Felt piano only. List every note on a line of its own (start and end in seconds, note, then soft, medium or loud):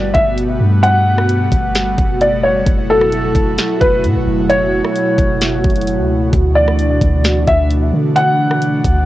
0.00 0.10 D5 medium
0.14 0.36 E5 medium
0.83 2.16 F#5 loud
2.21 2.43 D5 medium
2.43 2.65 C#5 medium
2.90 3.77 A4 medium
3.81 4.03 B4 medium
4.49 6.29 C#5 loud
6.55 7.43 D5 medium
7.47 7.69 E5 medium
8.16 9.05 F#5 loud